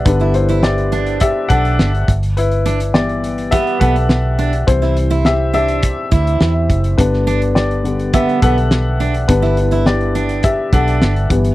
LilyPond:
<<
  \new Staff \with { instrumentName = "Upright piano" } { \time 4/4 \key g \major \tempo 4 = 104 <d' b'>8 <e' c''>8 <g' d''>4 <g' e''>8 <a' fis''>4 r8 | <e' b'>4 <g' d''>4 <g' e''>8 <a' fis''>4 r8 | <e' c''>4 <g' e''>8 <g' e''>4. r4 | <d' b'>4 <g' d''>4 <g' e''>8 <a' fis''>4 r8 |
<d' b'>4 <g' d''>4 <g' e''>8 <a' fis''>4 r8 | }
  \new Staff \with { instrumentName = "Upright piano" } { \clef bass \time 4/4 \key g \major <d g b>8 r2. r8 | r4 <e g b>2. | <e g c'>1 | <d g b>4. <d g b>8 r2 |
<d g b>8 r2. <e g b>8 | }
  \new Staff \with { instrumentName = "Steel-string acoustic guitar" } { \time 4/4 \key g \major r16 e'16 r16 e'16 r8 d'8 r8 d'8. r8. | r8 d'16 r4 r16 b8 b16 r8. d'16 r16 | r16 e'16 r16 e'16 r8 d'8 r8 e'8. r8. | r8 d'16 r4 r16 b8 b16 r8. d'16 r16 |
r16 e'16 r16 e'16 r8 d'8 r8 d'8. r8. | }
  \new Staff \with { instrumentName = "Fingered electric bass" } { \clef bass \time 4/4 \key g \major g,,2~ g,,16 r16 b,,8 g,,8 g,,8~ | g,,2~ g,,16 r16 b,,4. | c,2~ c,16 r16 d,8 e,8 fis,,8 | g,,2~ g,,16 r16 b,,4. |
g,,2~ g,,16 r16 b,,8 g,,8 g,,8 | }
  \new DrumStaff \with { instrumentName = "Drums" } \drummode { \time 4/4 <hh bd>16 hh16 hh16 hh16 sn16 hh16 hh16 hh16 <hh bd>8 <hh bd>16 hh16 sn16 hh16 <hh bd>16 hh16 | hh16 hh16 hh16 hh16 sn16 hh16 hh16 hh16 <hh bd>16 hh16 <hh bd>16 hh16 sn8 hh16 hh16 | <hh bd>16 <hh sn>16 hh16 hh16 sn8 hh16 hh16 <hh bd>8 <hh bd>16 hh16 sn8 <hh bd>16 hh16 | <hh bd>16 sn16 hh16 hh16 sn16 hh16 hh16 hh16 <hh bd>16 hh16 <hh bd>16 hh16 sn8 hh16 hh16 |
<hh bd>16 <hh sn>16 hh16 hh16 sn16 hh16 hh16 hh16 <hh bd>8 <hh bd>16 hh16 sn16 hh16 <hh bd>16 hh16 | }
>>